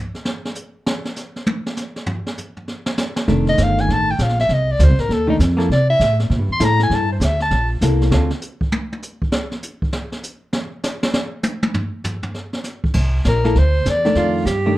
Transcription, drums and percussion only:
0.15 snare soft
0.25 snare loud
0.45 snare soft
0.55 hi-hat pedal medium
0.86 snare loud
1.05 snare soft
1.16 snare soft
1.16 hi-hat pedal medium
1.36 snare soft
1.46 high tom loud
1.66 snare soft
1.77 snare soft
1.77 hi-hat pedal medium
1.96 snare soft
2.06 floor tom loud
2.26 snare soft
2.37 floor tom soft
2.37 hi-hat pedal medium
2.57 floor tom soft
2.68 snare soft
2.86 snare medium
2.97 snare loud
2.97 hi-hat pedal medium
3.16 snare loud
3.28 brush sweep soft
3.28 kick soft
3.28 snare soft
3.47 snare soft
3.58 kick soft
3.58 snare medium
3.58 hi-hat pedal soft
3.78 snare soft
3.89 brush sweep soft
3.89 kick soft
3.89 snare soft
4.19 kick soft
4.19 snare medium
4.19 hi-hat pedal medium
4.29 snare soft
4.39 snare soft
4.49 brush sweep soft
4.49 kick soft
4.49 snare soft
4.79 kick soft
4.79 snare medium
4.79 hi-hat pedal soft
4.98 snare soft
5.10 brush sweep medium
5.10 kick soft
5.10 snare soft
5.40 kick soft
5.40 snare medium
5.40 hi-hat pedal medium
5.59 snare soft
5.70 brush sweep soft
5.70 kick soft
5.70 snare soft
6.00 kick soft
6.00 snare medium
6.00 hi-hat pedal medium
6.20 snare soft
6.30 brush sweep soft
6.30 kick soft
6.30 snare soft
6.60 kick soft
6.60 snare medium
6.60 hi-hat pedal medium
6.79 snare soft
6.90 brush sweep soft
6.90 kick soft
6.90 snare soft
7.21 kick soft
7.21 snare medium
7.21 hi-hat pedal medium
7.40 snare soft
7.51 brush sweep medium
7.51 kick soft
7.51 snare soft
7.81 kick soft
7.81 snare medium
7.81 hi-hat pedal medium
8.01 snare soft
8.12 snare medium
8.30 snare soft
8.42 hi-hat pedal medium
8.61 kick medium
8.72 high tom loud
8.92 high tom soft
9.02 hi-hat pedal medium
9.22 kick medium
9.32 snare loud
9.51 snare soft
9.63 hi-hat pedal medium
9.82 kick medium
9.93 snare loud
10.12 snare medium
10.23 hi-hat pedal medium
10.53 snare loud
10.83 snare loud
10.83 hi-hat pedal medium
11.03 snare loud
11.14 snare loud
11.43 hi-hat pedal medium
11.43 high tom loud
11.63 high tom loud
11.74 floor tom loud
12.04 floor tom loud
12.04 hi-hat pedal medium
12.23 floor tom medium
12.34 snare soft
12.53 snare soft
12.64 snare soft
12.64 hi-hat pedal medium
12.84 kick medium
12.94 brush sweep soft
12.94 kick medium
12.94 snare soft
12.94 crash medium
13.24 kick soft
13.24 snare medium
13.24 hi-hat pedal medium
13.44 snare soft
13.55 brush sweep soft
13.55 kick soft
13.55 snare soft
13.86 kick soft
13.86 snare medium
13.86 hi-hat pedal medium
14.05 snare soft
14.15 brush sweep soft
14.15 kick soft
14.15 snare soft
14.46 kick soft
14.46 snare medium
14.46 hi-hat pedal medium

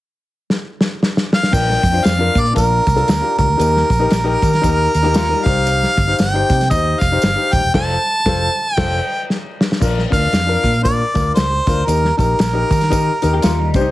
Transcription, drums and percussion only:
0.50 snare medium
0.81 snare medium
1.03 snare medium
1.17 snare medium
1.33 snare loud
1.43 snare medium
1.53 kick loud
1.53 crash medium
1.53 tambourine medium
1.70 snare soft
1.83 kick medium
1.83 closed hi-hat medium
1.83 tambourine soft
2.04 snare loud
2.04 closed hi-hat medium
2.04 tambourine medium
2.35 kick medium
2.35 closed hi-hat medium
2.35 tambourine soft
2.46 closed hi-hat soft
2.56 kick medium
2.56 closed hi-hat medium
2.56 tambourine medium
2.87 kick medium
2.87 closed hi-hat medium
2.87 tambourine soft
2.98 closed hi-hat soft
3.08 snare loud
3.08 closed hi-hat medium
3.08 tambourine medium
3.39 kick medium
3.39 closed hi-hat medium
3.39 tambourine soft
3.60 closed hi-hat medium
3.60 tambourine medium
3.76 snare soft
3.90 kick medium
3.90 closed hi-hat medium
3.90 tambourine soft
4.11 snare loud
4.11 closed hi-hat medium
4.11 tambourine medium
4.42 kick medium
4.42 closed hi-hat medium
4.42 tambourine medium
4.53 snare soft
4.53 closed hi-hat soft
4.64 kick medium
4.64 closed hi-hat medium
4.64 tambourine medium
4.95 closed hi-hat medium
4.95 tambourine soft
5.14 snare loud
5.14 closed hi-hat medium
5.14 tambourine medium
5.46 kick loud
5.46 open hi-hat soft
5.46 tambourine soft
5.67 closed hi-hat medium
5.67 tambourine medium
5.83 snare soft
5.98 kick medium
5.98 closed hi-hat medium
5.98 tambourine soft
6.18 snare loud
6.18 closed hi-hat medium
6.18 tambourine medium
6.50 kick medium
6.50 closed hi-hat medium
6.50 tambourine medium
6.61 snare soft
6.61 closed hi-hat medium
6.71 kick medium
6.71 closed hi-hat medium
6.71 tambourine medium
7.01 kick medium
7.01 closed hi-hat medium
7.01 tambourine medium
7.22 snare loud
7.22 closed hi-hat medium
7.22 tambourine medium
7.52 kick medium
7.52 closed hi-hat medium
7.52 tambourine soft
7.74 kick loud
7.74 snare loud
7.74 crash medium
8.26 kick loud
8.26 snare loud
8.77 kick loud
8.77 snare medium
8.77 crash medium
9.30 snare medium
9.61 snare medium
9.72 snare medium
9.82 kick loud
9.82 crash medium
9.82 tambourine medium
9.98 snare soft
10.12 kick medium
10.12 closed hi-hat medium
10.12 tambourine soft
10.33 snare loud
10.33 closed hi-hat medium
10.33 tambourine medium
10.64 kick medium
10.64 closed hi-hat medium
10.64 tambourine soft
10.74 closed hi-hat soft
10.85 kick medium
10.85 closed hi-hat medium
10.85 tambourine medium
11.15 kick medium
11.15 snare soft
11.15 closed hi-hat medium
11.15 tambourine soft
11.36 snare loud
11.36 closed hi-hat medium
11.36 tambourine medium
11.67 kick medium
11.67 closed hi-hat medium
11.67 tambourine soft
11.88 closed hi-hat medium
11.88 tambourine medium
12.05 snare soft
12.19 kick medium
12.19 closed hi-hat medium
12.19 tambourine soft
12.39 snare loud
12.39 closed hi-hat medium
12.39 tambourine medium
12.71 kick medium
12.71 closed hi-hat medium
12.71 tambourine soft
12.81 snare soft
12.81 closed hi-hat soft
12.91 kick medium
12.91 closed hi-hat medium
12.91 tambourine medium
13.22 closed hi-hat medium
13.22 tambourine soft
13.42 snare loud
13.42 closed hi-hat medium
13.42 tambourine medium
13.74 kick loud
13.74 closed hi-hat medium
13.74 tambourine soft

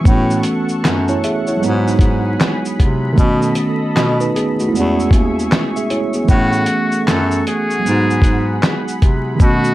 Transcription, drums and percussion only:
0.05 kick loud
0.05 shaker medium
0.30 shaker soft
0.43 closed hi-hat medium
0.43 shaker soft
0.69 shaker soft
0.85 snare loud
0.85 clap medium
0.85 shaker medium
1.08 shaker soft
1.24 closed hi-hat medium
1.24 shaker soft
1.47 shaker soft
1.63 shaker medium
1.88 shaker soft
1.99 kick loud
1.99 closed hi-hat medium
1.99 shaker soft
2.40 snare loud
2.40 clap medium
2.40 shaker medium
2.65 shaker medium
2.80 kick medium
2.80 closed hi-hat medium
2.80 shaker soft
3.18 kick loud
3.18 shaker medium
3.42 shaker soft
3.55 closed hi-hat medium
3.55 shaker medium
3.97 snare loud
3.97 clap medium
3.97 shaker medium
4.21 shaker soft
4.36 closed hi-hat medium
4.36 shaker soft
4.60 shaker soft
4.75 shaker medium
5.00 shaker soft
5.11 kick medium
5.11 closed hi-hat medium
5.11 shaker soft
5.39 shaker soft
5.52 snare loud
5.52 clap medium
5.52 shaker medium
5.76 shaker medium
5.90 closed hi-hat medium
5.90 shaker soft
6.13 shaker soft
6.29 kick loud
6.29 shaker medium
6.53 shaker soft
6.66 closed hi-hat medium
6.66 shaker soft
6.92 shaker soft
7.08 snare medium
7.08 clap medium
7.08 shaker medium
7.31 shaker soft
7.47 closed hi-hat medium
7.47 shaker soft
7.71 shaker soft
7.86 shaker medium
8.10 shaker soft
8.22 kick medium
8.22 closed hi-hat medium
8.22 shaker soft
8.63 snare loud
8.63 clap medium
8.63 shaker medium
8.88 shaker soft
9.02 kick medium
9.02 closed hi-hat medium
9.02 shaker soft
9.40 kick loud
9.40 shaker medium
9.64 shaker soft

